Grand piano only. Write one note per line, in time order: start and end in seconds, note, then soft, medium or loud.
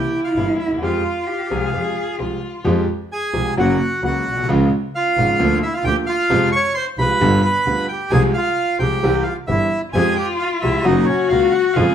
0.37 0.55 G1 soft
0.37 0.56 G2 soft
0.37 0.56 E3 soft
0.37 0.56 A#3 soft
0.37 0.56 C4 soft
0.37 0.56 G4 soft
0.66 0.71 D2 soft
0.72 0.77 D#2 soft
0.78 0.82 E2 medium
0.82 1.01 F2 medium
0.82 1.01 F3 medium
0.82 1.01 G#3 medium
0.82 1.01 C4 medium
0.82 1.01 G4 medium
1.50 1.70 C2 medium
1.50 1.70 C3 medium
1.50 1.69 F3 medium
1.50 1.70 G#3 medium
1.50 1.70 C4 medium
1.50 1.70 G4 medium
1.73 1.93 F2 soft
1.73 1.93 F3 soft
1.73 1.93 G#3 soft
1.73 1.93 C4 soft
1.73 1.93 G4 soft
2.19 2.39 C2 soft
2.19 2.39 C3 soft
2.19 2.39 F3 soft
2.19 2.38 G#3 soft
2.19 2.39 C4 soft
2.19 2.39 G4 soft
2.64 2.84 F2 medium
2.64 2.84 F3 medium
2.64 2.84 G#3 medium
2.64 2.84 C4 medium
2.64 2.84 G4 medium
3.33 3.53 C2 medium
3.33 3.53 C3 medium
3.33 3.53 F3 medium
3.33 3.53 G#3 soft
3.33 3.53 C4 soft
3.33 3.53 G4 medium
3.57 3.76 F#2 medium
3.57 3.76 C#3 medium
3.57 3.76 F#3 medium
3.57 3.76 A#3 medium
3.57 3.76 F#4 medium
4.03 4.22 C#2 medium
4.03 4.22 C#3 medium
4.03 4.21 F#3 soft
4.03 4.22 A#3 soft
4.03 4.22 F#4 medium
4.32 4.37 A#1 medium
4.37 4.42 B1 medium
4.43 4.48 C2 medium
4.49 4.67 C#2 medium
4.49 4.68 C#3 loud
4.49 4.67 F3 medium
4.49 4.68 G#3 medium
4.49 4.68 F4 medium
5.18 5.36 G#1 medium
5.18 5.36 G#2 medium
5.18 5.36 C#3 medium
5.18 5.36 F3 medium
5.18 5.36 G#3 soft
5.18 5.36 F4 medium
5.40 5.58 D2 medium
5.40 5.58 D3 medium
5.40 5.58 F3 medium
5.40 5.58 A#3 medium
5.40 5.58 F4 medium
5.85 6.04 D2 medium
5.85 6.04 D3 medium
5.85 6.04 F3 medium
5.85 6.04 A#3 soft
5.85 6.04 F4 medium
6.30 6.49 F2 loud
6.30 6.49 C3 medium
6.30 6.49 F3 loud
6.30 6.49 G#3 medium
6.30 6.49 F4 medium
6.99 7.17 C2 medium
6.99 7.17 C3 medium
6.99 7.17 F3 soft
6.99 7.18 G#3 soft
6.99 7.18 F4 medium
7.21 7.40 G1 loud
7.21 7.40 G2 medium
7.21 7.40 D3 medium
7.21 7.40 G3 medium
7.21 7.40 B3 medium
7.21 7.40 F4 medium
7.66 7.85 D2 medium
7.66 7.85 D3 medium
7.66 7.85 G3 soft
7.66 7.85 B3 soft
7.66 7.85 F4 medium
8.12 8.31 C2 medium
8.12 8.31 C3 loud
8.12 8.31 F3 medium
8.12 8.31 G#3 medium
8.12 8.31 C4 medium
8.12 8.31 G#4 medium
8.79 8.99 C2 medium
8.79 8.99 C3 medium
8.79 8.98 F3 medium
8.79 8.98 G#3 soft
8.79 8.99 C4 soft
8.79 8.99 G#4 medium
9.03 9.22 C2 medium
9.03 9.22 C3 medium
9.03 9.22 E3 medium
9.03 9.22 G3 medium
9.03 9.22 C4 medium
9.03 9.23 G4 medium
9.48 9.67 G1 medium
9.48 9.67 G2 medium
9.48 9.67 E3 soft
9.48 9.67 G3 soft
9.48 9.67 C4 soft
9.48 9.67 G4 medium
9.95 10.13 F2 medium
9.95 10.14 F3 medium
9.95 10.13 G#3 medium
9.95 10.14 C4 medium
9.95 10.14 G4 medium
10.63 10.82 C2 medium
10.63 10.82 C3 medium
10.63 10.82 F3 medium
10.63 10.82 G#3 soft
10.63 10.82 C4 soft
10.63 10.82 G4 medium
10.84 11.04 F#2 medium
10.84 11.04 C#3 medium
10.84 11.04 F#3 medium
10.84 11.04 A#3 medium
10.84 11.04 F#4 medium
11.31 11.50 C#2 medium
11.31 11.50 C#3 medium
11.31 11.50 F#3 soft
11.31 11.50 A#3 soft
11.31 11.50 F#4 medium
11.76 11.95 F2 medium
11.76 11.95 C#3 medium
11.76 11.95 F3 loud
11.76 11.95 G#3 medium
11.76 11.95 F4 medium